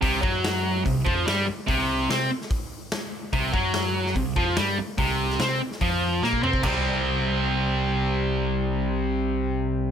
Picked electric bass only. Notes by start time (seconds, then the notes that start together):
0.03 C2
0.23 F#2
0.86 C2
1.07 F2
1.27 G2
1.49 muted picked electric bass stroke
1.68 C2
2.09 C3
3.33 C2
3.54 F#2
4.16 C2
4.36 F2
4.58 G2
4.79 muted picked electric bass stroke
4.98 C2
5.40 C3
5.81 F2
6.23 A#2
6.43 C3
6.63 C2